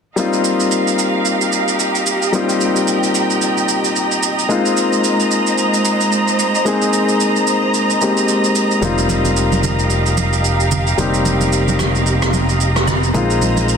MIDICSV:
0, 0, Header, 1, 5, 480
1, 0, Start_track
1, 0, Key_signature, -4, "minor"
1, 0, Tempo, 540541
1, 155, Time_signature, 4, 2, 24, 8
1, 12229, End_track
2, 0, Start_track
2, 0, Title_t, "String section"
2, 0, Program_c, 0, 48
2, 153, Note_on_c, 0, 75, 71
2, 154, Note_on_c, 0, 82, 80
2, 155, Note_on_c, 0, 67, 75
2, 155, Note_on_c, 0, 77, 71
2, 2056, Note_off_c, 0, 77, 0
2, 2074, Note_on_c, 0, 79, 67
2, 3959, Note_off_c, 0, 67, 0
2, 3975, Note_off_c, 0, 79, 0
2, 3997, Note_on_c, 0, 56, 75
2, 3997, Note_on_c, 0, 72, 71
2, 7801, Note_off_c, 0, 56, 0
2, 7801, Note_off_c, 0, 72, 0
2, 7834, Note_on_c, 0, 67, 73
2, 7835, Note_on_c, 0, 77, 68
2, 11639, Note_off_c, 0, 67, 0
2, 11639, Note_off_c, 0, 75, 0
2, 11639, Note_off_c, 0, 77, 0
2, 11639, Note_off_c, 0, 82, 0
2, 11673, Note_on_c, 0, 68, 76
2, 11673, Note_on_c, 0, 82, 85
2, 11674, Note_on_c, 0, 72, 68
2, 11675, Note_on_c, 0, 75, 72
2, 12229, Note_off_c, 0, 68, 0
2, 12229, Note_off_c, 0, 72, 0
2, 12229, Note_off_c, 0, 75, 0
2, 12229, Note_off_c, 0, 82, 0
2, 12229, End_track
3, 0, Start_track
3, 0, Title_t, "Grand piano"
3, 0, Program_c, 1, 0
3, 143, Note_on_c, 1, 55, 72
3, 151, Note_on_c, 1, 58, 67
3, 156, Note_on_c, 1, 60, 63
3, 163, Note_on_c, 1, 63, 64
3, 170, Note_on_c, 1, 65, 77
3, 295, Control_c, 1, 64, 127
3, 2033, Note_off_c, 1, 55, 0
3, 2037, Note_off_c, 1, 58, 0
3, 2040, Note_off_c, 1, 60, 0
3, 2043, Note_off_c, 1, 63, 0
3, 2047, Note_off_c, 1, 65, 0
3, 2063, Note_on_c, 1, 55, 70
3, 2070, Note_on_c, 1, 58, 68
3, 2076, Note_on_c, 1, 60, 69
3, 2084, Note_on_c, 1, 63, 66
3, 2090, Note_on_c, 1, 65, 79
3, 3953, Note_off_c, 1, 55, 0
3, 3957, Note_off_c, 1, 58, 0
3, 3960, Note_off_c, 1, 60, 0
3, 3964, Note_off_c, 1, 63, 0
3, 3967, Note_off_c, 1, 65, 0
3, 3984, Note_on_c, 1, 56, 76
3, 3990, Note_on_c, 1, 58, 66
3, 3997, Note_on_c, 1, 60, 68
3, 4003, Note_on_c, 1, 63, 70
3, 4008, Control_c, 1, 64, 0
3, 4010, Note_on_c, 1, 65, 83
3, 4169, Control_c, 1, 64, 127
3, 5874, Note_off_c, 1, 56, 0
3, 5877, Note_off_c, 1, 58, 0
3, 5880, Note_off_c, 1, 60, 0
3, 5884, Note_off_c, 1, 63, 0
3, 5887, Note_off_c, 1, 65, 0
3, 5905, Note_on_c, 1, 56, 72
3, 5911, Note_on_c, 1, 58, 66
3, 5918, Note_on_c, 1, 60, 66
3, 5924, Note_on_c, 1, 63, 66
3, 5930, Note_on_c, 1, 68, 78
3, 7086, Note_off_c, 1, 56, 0
3, 7089, Note_off_c, 1, 58, 0
3, 7092, Note_off_c, 1, 60, 0
3, 7095, Note_off_c, 1, 63, 0
3, 7099, Note_off_c, 1, 68, 0
3, 7113, Note_on_c, 1, 56, 54
3, 7117, Note_on_c, 1, 58, 51
3, 7120, Note_on_c, 1, 60, 50
3, 7123, Note_on_c, 1, 63, 49
3, 7126, Note_on_c, 1, 67, 61
3, 7822, Note_off_c, 1, 58, 0
3, 7827, Note_on_c, 1, 55, 75
3, 7828, Note_off_c, 1, 60, 0
3, 7834, Note_off_c, 1, 56, 0
3, 7834, Note_off_c, 1, 63, 0
3, 7835, Note_on_c, 1, 58, 68
3, 7841, Note_off_c, 1, 67, 0
3, 7841, Note_on_c, 1, 60, 66
3, 7846, Control_c, 1, 64, 0
3, 7848, Note_on_c, 1, 63, 66
3, 7855, Note_on_c, 1, 65, 77
3, 7986, Control_c, 1, 64, 127
3, 9716, Note_off_c, 1, 55, 0
3, 9720, Note_off_c, 1, 58, 0
3, 9723, Note_off_c, 1, 60, 0
3, 9726, Note_off_c, 1, 63, 0
3, 9729, Note_off_c, 1, 65, 0
3, 9746, Note_on_c, 1, 55, 73
3, 9753, Note_on_c, 1, 58, 66
3, 9759, Note_on_c, 1, 60, 69
3, 9765, Note_on_c, 1, 63, 68
3, 9773, Note_on_c, 1, 67, 81
3, 11635, Note_off_c, 1, 55, 0
3, 11638, Note_off_c, 1, 58, 0
3, 11642, Note_off_c, 1, 60, 0
3, 11645, Note_off_c, 1, 63, 0
3, 11648, Note_off_c, 1, 67, 0
3, 11666, Note_on_c, 1, 56, 73
3, 11672, Note_on_c, 1, 58, 68
3, 11678, Note_on_c, 1, 60, 65
3, 11684, Note_on_c, 1, 63, 65
3, 11686, Control_c, 1, 64, 0
3, 11691, Note_on_c, 1, 65, 82
3, 11851, Control_c, 1, 64, 127
3, 12229, Note_off_c, 1, 56, 0
3, 12229, Note_off_c, 1, 58, 0
3, 12229, Note_off_c, 1, 60, 0
3, 12229, Note_off_c, 1, 63, 0
3, 12229, Note_off_c, 1, 65, 0
3, 12229, End_track
4, 0, Start_track
4, 0, Title_t, "Fingered electric bass"
4, 0, Program_c, 2, 33
4, 7835, Note_on_c, 2, 29, 76
4, 9720, Note_off_c, 2, 29, 0
4, 9754, Note_on_c, 2, 29, 78
4, 11639, Note_off_c, 2, 29, 0
4, 11675, Note_on_c, 2, 34, 77
4, 12229, Note_off_c, 2, 34, 0
4, 12229, End_track
5, 0, Start_track
5, 0, Title_t, "Drums"
5, 154, Note_on_c, 9, 82, 72
5, 242, Note_off_c, 9, 82, 0
5, 293, Note_on_c, 9, 82, 52
5, 382, Note_off_c, 9, 82, 0
5, 394, Note_on_c, 9, 82, 78
5, 483, Note_off_c, 9, 82, 0
5, 532, Note_on_c, 9, 82, 56
5, 621, Note_off_c, 9, 82, 0
5, 634, Note_on_c, 9, 82, 74
5, 723, Note_off_c, 9, 82, 0
5, 775, Note_on_c, 9, 82, 48
5, 863, Note_off_c, 9, 82, 0
5, 875, Note_on_c, 9, 82, 77
5, 964, Note_off_c, 9, 82, 0
5, 1111, Note_on_c, 9, 82, 59
5, 1200, Note_off_c, 9, 82, 0
5, 1254, Note_on_c, 9, 82, 56
5, 1343, Note_off_c, 9, 82, 0
5, 1352, Note_on_c, 9, 82, 82
5, 1441, Note_off_c, 9, 82, 0
5, 1492, Note_on_c, 9, 82, 55
5, 1581, Note_off_c, 9, 82, 0
5, 1593, Note_on_c, 9, 82, 74
5, 1682, Note_off_c, 9, 82, 0
5, 1732, Note_on_c, 9, 82, 47
5, 1821, Note_off_c, 9, 82, 0
5, 1832, Note_on_c, 9, 82, 87
5, 1921, Note_off_c, 9, 82, 0
5, 1972, Note_on_c, 9, 82, 49
5, 2061, Note_off_c, 9, 82, 0
5, 2073, Note_on_c, 9, 82, 69
5, 2162, Note_off_c, 9, 82, 0
5, 2213, Note_on_c, 9, 82, 57
5, 2301, Note_off_c, 9, 82, 0
5, 2314, Note_on_c, 9, 82, 76
5, 2402, Note_off_c, 9, 82, 0
5, 2452, Note_on_c, 9, 82, 61
5, 2540, Note_off_c, 9, 82, 0
5, 2552, Note_on_c, 9, 82, 75
5, 2641, Note_off_c, 9, 82, 0
5, 2693, Note_on_c, 9, 82, 49
5, 2782, Note_off_c, 9, 82, 0
5, 2794, Note_on_c, 9, 82, 75
5, 2882, Note_off_c, 9, 82, 0
5, 2932, Note_on_c, 9, 82, 47
5, 3021, Note_off_c, 9, 82, 0
5, 3031, Note_on_c, 9, 82, 58
5, 3120, Note_off_c, 9, 82, 0
5, 3174, Note_on_c, 9, 82, 53
5, 3262, Note_off_c, 9, 82, 0
5, 3273, Note_on_c, 9, 82, 83
5, 3361, Note_off_c, 9, 82, 0
5, 3413, Note_on_c, 9, 82, 53
5, 3502, Note_off_c, 9, 82, 0
5, 3514, Note_on_c, 9, 82, 73
5, 3603, Note_off_c, 9, 82, 0
5, 3654, Note_on_c, 9, 82, 50
5, 3743, Note_off_c, 9, 82, 0
5, 3755, Note_on_c, 9, 82, 91
5, 3843, Note_off_c, 9, 82, 0
5, 3895, Note_on_c, 9, 82, 49
5, 3984, Note_off_c, 9, 82, 0
5, 3995, Note_on_c, 9, 82, 68
5, 4084, Note_off_c, 9, 82, 0
5, 4134, Note_on_c, 9, 82, 56
5, 4223, Note_off_c, 9, 82, 0
5, 4235, Note_on_c, 9, 82, 79
5, 4323, Note_off_c, 9, 82, 0
5, 4373, Note_on_c, 9, 82, 57
5, 4462, Note_off_c, 9, 82, 0
5, 4476, Note_on_c, 9, 82, 77
5, 4564, Note_off_c, 9, 82, 0
5, 4615, Note_on_c, 9, 82, 47
5, 4703, Note_off_c, 9, 82, 0
5, 4715, Note_on_c, 9, 82, 81
5, 4804, Note_off_c, 9, 82, 0
5, 4854, Note_on_c, 9, 82, 50
5, 4942, Note_off_c, 9, 82, 0
5, 4953, Note_on_c, 9, 82, 57
5, 5042, Note_off_c, 9, 82, 0
5, 5095, Note_on_c, 9, 82, 54
5, 5184, Note_off_c, 9, 82, 0
5, 5194, Note_on_c, 9, 82, 86
5, 5283, Note_off_c, 9, 82, 0
5, 5334, Note_on_c, 9, 82, 55
5, 5423, Note_off_c, 9, 82, 0
5, 5434, Note_on_c, 9, 82, 69
5, 5523, Note_off_c, 9, 82, 0
5, 5574, Note_on_c, 9, 82, 48
5, 5663, Note_off_c, 9, 82, 0
5, 5675, Note_on_c, 9, 82, 87
5, 5764, Note_off_c, 9, 82, 0
5, 5815, Note_on_c, 9, 82, 50
5, 5903, Note_off_c, 9, 82, 0
5, 5915, Note_on_c, 9, 82, 69
5, 6004, Note_off_c, 9, 82, 0
5, 6053, Note_on_c, 9, 82, 56
5, 6142, Note_off_c, 9, 82, 0
5, 6154, Note_on_c, 9, 82, 82
5, 6243, Note_off_c, 9, 82, 0
5, 6293, Note_on_c, 9, 82, 59
5, 6381, Note_off_c, 9, 82, 0
5, 6395, Note_on_c, 9, 82, 74
5, 6484, Note_off_c, 9, 82, 0
5, 6535, Note_on_c, 9, 82, 47
5, 6623, Note_off_c, 9, 82, 0
5, 6634, Note_on_c, 9, 82, 79
5, 6723, Note_off_c, 9, 82, 0
5, 6873, Note_on_c, 9, 82, 59
5, 6962, Note_off_c, 9, 82, 0
5, 7015, Note_on_c, 9, 82, 53
5, 7104, Note_off_c, 9, 82, 0
5, 7113, Note_on_c, 9, 82, 83
5, 7202, Note_off_c, 9, 82, 0
5, 7255, Note_on_c, 9, 82, 56
5, 7344, Note_off_c, 9, 82, 0
5, 7355, Note_on_c, 9, 82, 70
5, 7443, Note_off_c, 9, 82, 0
5, 7495, Note_on_c, 9, 82, 47
5, 7584, Note_off_c, 9, 82, 0
5, 7596, Note_on_c, 9, 82, 84
5, 7684, Note_off_c, 9, 82, 0
5, 7734, Note_on_c, 9, 82, 52
5, 7823, Note_off_c, 9, 82, 0
5, 7836, Note_on_c, 9, 64, 68
5, 7836, Note_on_c, 9, 82, 70
5, 7925, Note_off_c, 9, 64, 0
5, 7925, Note_off_c, 9, 82, 0
5, 7975, Note_on_c, 9, 82, 55
5, 8063, Note_off_c, 9, 82, 0
5, 8076, Note_on_c, 9, 63, 81
5, 8076, Note_on_c, 9, 82, 83
5, 8165, Note_off_c, 9, 63, 0
5, 8165, Note_off_c, 9, 82, 0
5, 8213, Note_on_c, 9, 63, 65
5, 8213, Note_on_c, 9, 82, 61
5, 8302, Note_off_c, 9, 63, 0
5, 8302, Note_off_c, 9, 82, 0
5, 8315, Note_on_c, 9, 82, 75
5, 8404, Note_off_c, 9, 82, 0
5, 8455, Note_on_c, 9, 82, 49
5, 8456, Note_on_c, 9, 63, 74
5, 8544, Note_off_c, 9, 82, 0
5, 8545, Note_off_c, 9, 63, 0
5, 8555, Note_on_c, 9, 82, 80
5, 8557, Note_on_c, 9, 63, 74
5, 8557, Note_on_c, 9, 64, 70
5, 8644, Note_off_c, 9, 82, 0
5, 8646, Note_off_c, 9, 63, 0
5, 8646, Note_off_c, 9, 64, 0
5, 8693, Note_on_c, 9, 82, 49
5, 8782, Note_off_c, 9, 82, 0
5, 8792, Note_on_c, 9, 82, 57
5, 8880, Note_off_c, 9, 82, 0
5, 8935, Note_on_c, 9, 82, 53
5, 9024, Note_off_c, 9, 82, 0
5, 9034, Note_on_c, 9, 63, 71
5, 9034, Note_on_c, 9, 82, 85
5, 9123, Note_off_c, 9, 63, 0
5, 9123, Note_off_c, 9, 82, 0
5, 9173, Note_on_c, 9, 82, 55
5, 9262, Note_off_c, 9, 82, 0
5, 9274, Note_on_c, 9, 82, 74
5, 9362, Note_off_c, 9, 82, 0
5, 9414, Note_on_c, 9, 82, 49
5, 9503, Note_off_c, 9, 82, 0
5, 9513, Note_on_c, 9, 82, 89
5, 9515, Note_on_c, 9, 64, 70
5, 9602, Note_off_c, 9, 82, 0
5, 9604, Note_off_c, 9, 64, 0
5, 9652, Note_on_c, 9, 82, 48
5, 9741, Note_off_c, 9, 82, 0
5, 9754, Note_on_c, 9, 82, 69
5, 9756, Note_on_c, 9, 64, 72
5, 9842, Note_off_c, 9, 82, 0
5, 9844, Note_off_c, 9, 64, 0
5, 9892, Note_on_c, 9, 82, 56
5, 9980, Note_off_c, 9, 82, 0
5, 9994, Note_on_c, 9, 82, 81
5, 9995, Note_on_c, 9, 63, 77
5, 10083, Note_off_c, 9, 63, 0
5, 10083, Note_off_c, 9, 82, 0
5, 10131, Note_on_c, 9, 63, 69
5, 10131, Note_on_c, 9, 82, 59
5, 10219, Note_off_c, 9, 63, 0
5, 10220, Note_off_c, 9, 82, 0
5, 10233, Note_on_c, 9, 82, 77
5, 10322, Note_off_c, 9, 82, 0
5, 10373, Note_on_c, 9, 82, 51
5, 10374, Note_on_c, 9, 63, 76
5, 10462, Note_off_c, 9, 82, 0
5, 10463, Note_off_c, 9, 63, 0
5, 10471, Note_on_c, 9, 37, 85
5, 10474, Note_on_c, 9, 63, 73
5, 10474, Note_on_c, 9, 64, 70
5, 10474, Note_on_c, 9, 82, 77
5, 10560, Note_off_c, 9, 37, 0
5, 10563, Note_off_c, 9, 63, 0
5, 10563, Note_off_c, 9, 64, 0
5, 10563, Note_off_c, 9, 82, 0
5, 10613, Note_on_c, 9, 82, 49
5, 10702, Note_off_c, 9, 82, 0
5, 10712, Note_on_c, 9, 82, 61
5, 10801, Note_off_c, 9, 82, 0
5, 10854, Note_on_c, 9, 37, 98
5, 10854, Note_on_c, 9, 82, 55
5, 10943, Note_off_c, 9, 37, 0
5, 10943, Note_off_c, 9, 82, 0
5, 10951, Note_on_c, 9, 63, 69
5, 10952, Note_on_c, 9, 82, 87
5, 11039, Note_off_c, 9, 63, 0
5, 11041, Note_off_c, 9, 82, 0
5, 11091, Note_on_c, 9, 82, 54
5, 11180, Note_off_c, 9, 82, 0
5, 11192, Note_on_c, 9, 82, 72
5, 11281, Note_off_c, 9, 82, 0
5, 11332, Note_on_c, 9, 37, 89
5, 11332, Note_on_c, 9, 82, 47
5, 11421, Note_off_c, 9, 37, 0
5, 11421, Note_off_c, 9, 82, 0
5, 11432, Note_on_c, 9, 37, 90
5, 11432, Note_on_c, 9, 64, 72
5, 11433, Note_on_c, 9, 82, 90
5, 11521, Note_off_c, 9, 37, 0
5, 11521, Note_off_c, 9, 64, 0
5, 11522, Note_off_c, 9, 82, 0
5, 11573, Note_on_c, 9, 82, 52
5, 11662, Note_off_c, 9, 82, 0
5, 11672, Note_on_c, 9, 64, 69
5, 11674, Note_on_c, 9, 82, 69
5, 11761, Note_off_c, 9, 64, 0
5, 11763, Note_off_c, 9, 82, 0
5, 11813, Note_on_c, 9, 82, 53
5, 11902, Note_off_c, 9, 82, 0
5, 11913, Note_on_c, 9, 82, 83
5, 11914, Note_on_c, 9, 63, 77
5, 12002, Note_off_c, 9, 82, 0
5, 12003, Note_off_c, 9, 63, 0
5, 12049, Note_on_c, 9, 63, 68
5, 12051, Note_on_c, 9, 82, 61
5, 12138, Note_off_c, 9, 63, 0
5, 12140, Note_off_c, 9, 82, 0
5, 12153, Note_on_c, 9, 82, 72
5, 12229, Note_off_c, 9, 82, 0
5, 12229, End_track
0, 0, End_of_file